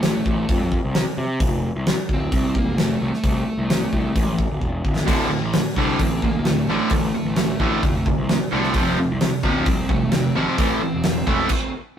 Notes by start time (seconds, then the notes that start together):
Already playing: A1 A3
0.03 snare, open hi-hat
0.26 A1, kick
0.49 F2, kick, open hi-hat
0.72 kick
0.84 C2
0.95 snare, open hi-hat
1.18 C3
1.40 F1, kick, open hi-hat
1.75 C2
1.87 snare, open hi-hat
2.09 D1, kick
2.13 C4
2.32 C2, kick, open hi-hat
2.55 A#3, kick
2.66 F1
2.78 A3, snare, open hi-hat
3.01 C2 A3
3.14 snare
3.24 C2, kick, open hi-hat
3.58 C2
3.70 snare, open hi-hat
3.93 C2, kick
4.15 A1, kick, open hi-hat
4.39 kick
4.50 D1
4.61 E1, kick
4.84 D1, kick
4.96 snare
5.07 D1 D2 A2 D3, kick, open hi-hat, crash
5.30 D2 A2
5.41 A1
5.53 D2 A2, snare, open hi-hat
5.76 C2 D2 A2 D3 D4, kick
5.99 A1 D2 A2 C4, kick, open hi-hat
6.22 D2 A2 A#3, kick
6.34 D1
6.45 D2 A2 A3, snare, open hi-hat
6.68 A1 D2 A2 D3 A3
6.90 A1 D2 A2, kick, open hi-hat
7.15 D2 A2
7.25 A1
7.36 D2 A2, snare, open hi-hat
7.60 A1 D2 A2 D3, kick
7.83 F1 D2 A2, kick, open hi-hat
8.06 D2 A2, kick
8.17 C2
8.29 D2 A2, snare, open hi-hat
8.52 C2 D2 A2 D3
8.64 snare
8.74 F1 F2 C3 F3, kick, open hi-hat
8.98 F2 C3
9.11 C2
9.21 F2 C3, snare, open hi-hat
9.43 D1 F2 C3 F3, kick
9.48 C4
9.66 C2 F2 C3, kick, open hi-hat
9.89 F2 C3 A3, kick
10.01 F1
10.12 F2 C3 C4, snare, open hi-hat
10.35 G#1 F2 C3 F3 C4
10.57 A1 A2 E3 A3, kick, open hi-hat
10.81 A2 E3
10.94 E1
11.04 A2 E3, snare, open hi-hat
11.27 E1 A2 E3 A3, kick
11.49 kick, crash